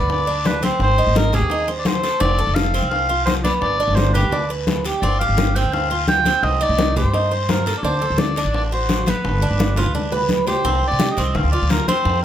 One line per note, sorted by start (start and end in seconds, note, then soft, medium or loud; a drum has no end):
0.00 0.68 D2 medium
0.00 0.26 B3 medium
0.00 0.10 D5 medium
0.09 0.48 D5 loud
0.09 high bongo medium
0.09 high conga soft
0.09 long guiro medium
0.27 0.61 D4 medium
0.27 high conga soft
0.44 0.63 B4 medium
0.44 high bongo medium
0.44 low bongo medium
0.44 high conga medium
0.44 short guiro medium
0.62 0.97 C4 medium
0.62 0.80 C5 medium
0.62 high conga medium
0.62 short guiro medium
0.79 1.05 G#1 loud
0.79 1.14 C5 loud
0.79 high bongo medium
0.79 high conga soft
0.79 long guiro medium
0.98 1.32 D#4 medium
0.98 high bongo soft
0.98 high conga soft
1.07 1.40 G#1 medium
1.15 1.36 A#4 medium
1.15 high bongo medium
1.15 high conga medium
1.15 short guiro medium
1.33 1.50 G4 medium
1.33 1.69 G#4 loud
1.33 high bongo soft
1.33 high conga soft
1.33 low conga medium
1.33 short guiro medium
1.41 2.08 D#2 medium
1.50 1.68 D#4 medium
1.50 high bongo medium
1.50 high conga soft
1.50 long guiro medium
1.68 2.02 C5 medium
1.68 high conga soft
1.79 1.88 D5 medium
1.85 2.22 C5 loud
1.85 high bongo medium
1.85 low bongo medium
1.85 high conga medium
1.85 short guiro medium
2.03 2.21 A4 medium
2.03 high bongo soft
2.03 high conga soft
2.03 short guiro medium
2.20 2.46 F1 loud
2.20 2.38 C4 medium
2.20 2.56 D5 loud
2.20 high bongo medium
2.20 high conga soft
2.20 long guiro medium
2.39 2.73 A4 medium
2.39 high conga soft
2.47 2.81 F1 loud
2.55 2.90 F5 loud
2.55 high bongo medium
2.55 high conga medium
2.55 short guiro medium
2.74 3.08 C4 medium
2.74 high conga soft
2.74 short guiro medium
2.83 3.50 C2 medium
2.90 3.23 F5 loud
2.90 high bongo medium
2.90 high conga soft
2.90 long guiro medium
3.09 3.43 F4 medium
3.09 high conga soft
3.25 3.34 C5 loud
3.25 high bongo medium
3.25 low bongo medium
3.25 high conga medium
3.25 short guiro medium
3.44 3.79 B3 medium
3.44 3.52 D5 medium
3.44 high conga medium
3.44 short guiro medium
3.61 3.87 G1 medium
3.61 3.97 D5 loud
3.61 high bongo medium
3.61 high conga soft
3.61 long guiro medium
3.80 4.14 D4 medium
3.80 high bongo soft
3.80 high conga soft
3.88 4.21 G1 loud
3.95 4.13 C5 loud
3.95 high bongo medium
3.95 high conga medium
3.95 short guiro medium
4.14 4.32 G4 medium
4.14 4.47 B4 medium
4.14 high bongo soft
4.14 high conga soft
4.14 low conga medium
4.14 short guiro medium
4.23 4.90 D2 medium
4.31 4.49 D4 medium
4.31 high bongo medium
4.31 high conga soft
4.31 low conga medium
4.31 long guiro medium
4.49 4.84 B4 medium
4.49 high conga soft
4.67 high bongo medium
4.67 low bongo medium
4.67 high conga medium
4.67 short guiro medium
4.85 5.02 G4 medium
4.85 high bongo soft
4.85 high conga soft
4.85 short guiro medium
5.02 5.27 G1 medium
5.02 5.20 C4 medium
5.02 5.18 D5 loud
5.02 high bongo medium
5.02 high conga soft
5.02 long guiro medium
5.19 5.55 G4 medium
5.19 5.57 F5 loud
5.19 high conga soft
5.29 5.62 G1 medium
5.37 high bongo medium
5.37 high conga medium
5.37 short guiro medium
5.55 5.90 C4 medium
5.55 5.72 G5 loud
5.55 high conga soft
5.55 short guiro medium
5.64 6.31 D2 medium
5.72 6.06 F5 loud
5.72 high bongo medium
5.72 high conga soft
5.72 long guiro medium
5.90 6.25 F4 medium
5.90 high conga soft
6.08 6.45 G5 loud
6.08 high bongo medium
6.08 low bongo medium
6.08 high conga medium
6.08 short guiro medium
6.25 6.60 C4 medium
6.25 high conga medium
6.25 short guiro medium
6.43 6.68 C2 medium
6.43 6.63 D#5 loud
6.43 high bongo medium
6.43 high conga soft
6.43 long guiro medium
6.61 6.95 D#4 medium
6.61 6.96 D5 loud
6.61 high bongo soft
6.61 high conga soft
6.69 7.03 C2 medium
6.78 high bongo medium
6.78 high conga medium
6.78 short guiro medium
6.96 7.13 G4 medium
6.96 7.52 C5 medium
6.96 high bongo soft
6.96 high conga soft
6.96 low conga medium
6.96 short guiro medium
7.04 7.71 G2 medium
7.14 7.31 D#4 medium
7.14 high bongo medium
7.14 high conga soft
7.14 long guiro medium
7.31 7.65 C5 medium
7.31 high conga soft
7.49 7.77 A#4 medium
7.49 high bongo medium
7.49 low bongo medium
7.49 high conga medium
7.49 short guiro medium
7.66 7.84 A4 medium
7.66 high bongo soft
7.66 high conga soft
7.66 short guiro medium
7.78 7.85 D5 medium
7.83 8.08 D2 loud
7.83 8.01 D4 medium
7.83 8.20 C5 loud
7.83 high bongo medium
7.83 high conga soft
7.83 long guiro medium
8.02 8.36 A4 medium
8.02 high conga soft
8.10 8.44 D2 medium
8.18 8.54 D5 medium
8.18 high bongo medium
8.18 high conga medium
8.18 short guiro medium
8.36 8.71 D4 medium
8.36 high conga soft
8.36 short guiro medium
8.45 9.12 A1 medium
8.54 8.63 D5 medium
8.54 high bongo medium
8.54 high conga soft
8.54 long guiro medium
8.72 9.06 F#4 medium
8.72 9.10 C5 medium
8.72 high conga soft
8.89 high bongo medium
8.89 low bongo medium
8.89 high conga medium
8.89 short guiro medium
9.06 9.41 B3 medium
9.06 10.31 B4 medium
9.06 high conga medium
9.06 short guiro medium
9.25 9.50 G1 loud
9.25 high bongo medium
9.25 high conga soft
9.25 long guiro medium
9.42 9.76 D4 medium
9.42 high bongo soft
9.42 high conga soft
9.51 9.84 G1 medium
9.59 high bongo medium
9.59 high conga loud
9.59 short guiro medium
9.76 9.94 F4 medium
9.76 high bongo soft
9.76 high conga soft
9.76 low conga loud
9.76 short guiro medium
9.86 10.53 D2 medium
9.94 10.12 D4 medium
9.94 high bongo medium
9.94 high conga soft
9.94 low conga medium
9.94 long guiro medium
10.12 10.46 B4 medium
10.12 low bongo loud
10.12 high conga soft
10.29 low bongo medium
10.29 high conga medium
10.29 short guiro medium
10.47 10.64 G4 medium
10.47 10.85 C5 loud
10.47 low bongo loud
10.47 high conga soft
10.47 short guiro medium
10.64 10.82 C2 medium
10.64 10.99 C4 medium
10.64 high bongo medium
10.64 high conga soft
10.64 long guiro medium
10.82 high bongo soft
10.82 high conga soft
10.87 11.10 D5 loud
10.91 11.08 C3 loud
10.99 11.17 G4 medium
10.99 high bongo medium
10.99 high conga medium
10.99 short guiro medium
11.11 11.38 D#5 medium
11.17 11.34 C2 medium
11.17 11.52 C4 medium
11.17 high bongo soft
11.17 high conga soft
11.17 short guiro medium
11.34 11.43 D2 loud
11.34 11.51 F5 loud
11.34 high bongo medium
11.34 high conga soft
11.34 long guiro medium
11.44 11.61 D2 medium
11.51 11.87 F4 medium
11.51 11.72 D5 medium
11.51 high conga soft
11.62 11.79 D2 medium
11.70 11.87 A#4 medium
11.70 high bongo medium
11.70 low bongo medium
11.70 high conga medium
11.70 short guiro medium
11.88 12.23 C4 loud
11.88 12.21 C5 loud
11.88 high bongo soft
11.88 high conga medium
11.88 short guiro medium
12.05 12.22 F2 loud
12.05 high bongo medium
12.05 high conga soft
12.05 long guiro medium